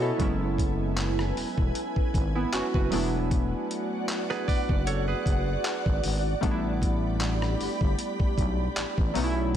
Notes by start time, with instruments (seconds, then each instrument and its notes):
Already playing: fm bass B2, synth keys B3 C#4 E4 F#4 D#5 E5 F#5 G#5, ambient pad E4 C#5 A5, clean electric guitar A4 C#5
0.02 synth keys E4 A4
0.18 fm bass F#1, synth keys F#3 G#3 B3 C#4 E4, ambient pad B4 G#5, kick, closed hi-hat
0.58 kick, closed hi-hat
0.97 clap, closed hi-hat
1.19 cross-stick
1.37 open hi-hat
1.58 fm bass E1, kick
1.75 closed hi-hat
1.96 kick
2.14 fm bass G#1, kick, closed hi-hat
2.35 synth keys B3 E4
2.53 fm bass F#1, synth keys C#4 F#4, clap, closed hi-hat
2.74 fm bass F#1, synth keys F#4 B4, kick
2.90 fm bass E1, synth keys F#3 A3 B3 D4 E4, ambient pad F#4 D5 F#5, open hi-hat
3.31 kick, closed hi-hat
3.71 closed hi-hat
4.09 clap, closed hi-hat
4.30 clean electric guitar G#4 B4, cross-stick
4.48 fm bass F#1, clean electric guitar B4 D5, kick, open hi-hat
4.69 fm bass F#1, kick
4.87 clean electric guitar A4 C#5, closed hi-hat
5.08 clean electric guitar G#4 B4
5.26 fm bass F#1, kick, closed hi-hat
5.65 clap, closed hi-hat
5.86 fm bass G#1, kick
6.04 fm bass G#1, open hi-hat
6.41 fm bass A1, synth keys G3 A3 B3 D4 D#4, ambient pad G4 B5, kick, closed hi-hat
6.51 synth keys E4
6.82 kick, closed hi-hat
7.21 clap, closed hi-hat
7.42 cross-stick
7.60 fm bass G1, open hi-hat
7.81 fm bass G1, kick
7.99 closed hi-hat
8.20 kick
8.38 fm bass B1, kick, closed hi-hat
8.77 fm bass A1, clap, closed hi-hat
8.98 fm bass A1, kick
9.14 fm bass B1, ambient pad E3 C#5 A5, synth keys F#3 A3 B3 C#4 D#4, open hi-hat
9.24 synth keys E4